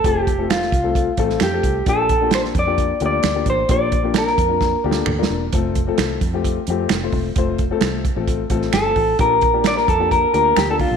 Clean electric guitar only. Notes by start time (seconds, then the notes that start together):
0.06 G4
0.50 F4
1.43 G4
1.89 A4
2.35 C5
2.59 D5
3.06 D5
3.50 C5
3.71 D5
4.18 A#4
4.90 A4
8.74 A4
9.21 A#4
9.67 D5
9.77 A#4
9.89 A4
10.12 A#4
10.34 A#4
10.57 G4
10.71 A4
10.81 F4